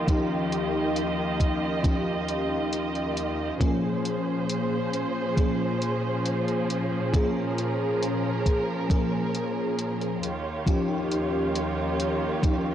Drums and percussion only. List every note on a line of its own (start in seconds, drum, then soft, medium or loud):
0.08 kick loud
0.08 closed hi-hat medium
0.52 closed hi-hat medium
0.96 closed hi-hat medium
1.40 kick medium
1.40 closed hi-hat medium
1.84 kick loud
1.84 closed hi-hat medium
2.28 closed hi-hat medium
2.73 closed hi-hat medium
2.95 closed hi-hat soft
3.17 closed hi-hat medium
3.61 kick loud
3.61 closed hi-hat medium
4.05 closed hi-hat medium
4.49 closed hi-hat medium
4.93 closed hi-hat medium
5.37 kick loud
5.37 closed hi-hat medium
5.82 closed hi-hat medium
6.26 closed hi-hat medium
6.48 closed hi-hat soft
6.70 closed hi-hat medium
7.14 kick loud
7.14 closed hi-hat medium
7.58 closed hi-hat medium
8.03 closed hi-hat medium
8.46 kick medium
8.46 closed hi-hat medium
8.90 kick loud
8.90 closed hi-hat medium
9.35 closed hi-hat medium
9.79 closed hi-hat medium
10.01 closed hi-hat soft
10.23 closed hi-hat medium
10.67 kick loud
10.67 closed hi-hat medium
11.11 closed hi-hat medium
11.55 closed hi-hat medium
12.00 closed hi-hat medium
12.43 kick loud
12.43 closed hi-hat medium